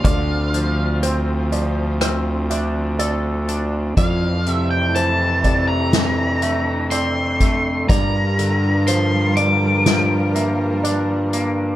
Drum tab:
HH |xxxxxxxx|xxxxxxxx|xxxxxxxx|
SD |----r---|----o---|----o---|
BD |o-------|o--o---o|o-------|